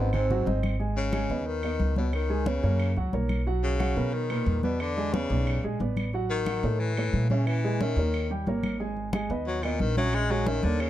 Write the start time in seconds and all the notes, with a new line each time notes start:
Already playing: G#1 F#2 B3 C4 C5 D#5
0.13 G#2 C4, high conga, low conga, claves
0.31 F#3 F#4 F#5, high conga, low conga
0.46 G#1 C4 C5 D#5, high conga
0.63 high conga, claves
0.79 G#3 G#4 G#5, high conga
0.97 C#3, high conga
1.13 G#3 G#4 G#5, high conga, claves
1.30 D#2 B3 B4 D#5, high conga
1.46 D#3, high conga
1.63 B3 B4 D#5, high conga, claves
1.79 C#2, high conga
1.96 B2 B3 B4 C#5, high conga
2.13 D#3, high conga, claves
2.30 G#3 G#4 G#5, high conga
2.46 C#3 B3 B4 C#5, high conga
2.63 F#2 A#3 A#4 C#5, high conga
2.80 high conga, claves
2.96 C#2 F#3 F#4 F#5, high conga
3.13 B1 A#3 A#4 C#5, high conga
3.29 high conga, claves
3.47 F#3 F#4 F#5, high conga
3.63 C#3, high conga
3.80 F#3 F#4 F#5, high conga, claves
3.96 B2 B3 A#4 B4, high conga
4.14 D#3, high conga
4.30 A#2 A#4 B4, high conga, claves
4.46 E2, high conga
4.63 B2 B3 B4 D5, high conga
4.80 D3, high conga, claves
4.97 G#3 G#4 G#5, high conga
5.13 C#3 B3 B4 D5, high conga
5.30 B1 B3 B4 D5, high conga
5.47 high conga, claves
5.63 A#1 G#3 G#4 G#5, high conga
5.80 A1 B3 B4 D5, high conga
5.97 high conga, claves
6.13 F#3 F#4 F#5, high conga
6.30 D#3, high conga
6.46 F#3 F#4 F#5, high conga, claves
6.63 A2 A3 A4 C#5, high conga
6.80 E3, high conga
6.97 A3 A4 C#5, high conga, claves
7.13 A#2, high conga
7.30 C#3 C#4 C#5 E5, high conga
7.47 E3, high conga, claves
7.64 G#3 G#4 G#5, high conga
7.81 D#3 C#4 C#5 E5, high conga
7.96 D#2 A#3 A#4 C#5, high conga
8.14 high conga, claves
8.30 G3 G4 G5, high conga
8.46 G#1 A#3 A#4 C#5, high conga
8.63 high conga, claves
8.80 G#3 G#4 G#5, high conga
8.97 high conga
9.13 G#3 G#4 G#5, high conga, claves
9.30 D#2 B3 B4 D#5, high conga
9.47 F#3, high conga
9.63 A#2 B3 B4 D#5, high conga, claves
9.80 A#1 D#3, high conga
9.97 F#3 C#4 C#5 E5, high conga
10.13 G#3, high conga, claves
10.30 F#3 G#3 G#4 G#5, high conga
10.46 D#3 C#4 C#5 E5, high conga
10.63 D#2 D3 A#3 A#4 C#5, high conga
10.80 C#3, claves